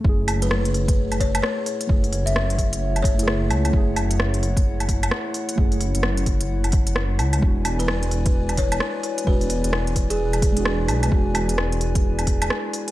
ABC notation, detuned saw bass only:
X:1
M:4/4
L:1/16
Q:"Swing 16ths" 1/4=130
K:F#m
V:1 name="Detuned saw bass" clef=bass
F,,,12 z4 | F,,,3 F,,,8- F,,,3 C,,2 | F,,,12 z4 | F,,,3 F,,,8- F,,,3 C,,2 |
E,,,12 z4 | E,,,3 E,,,8- E,,,3 B,,,2 | E,,,12 z4 |]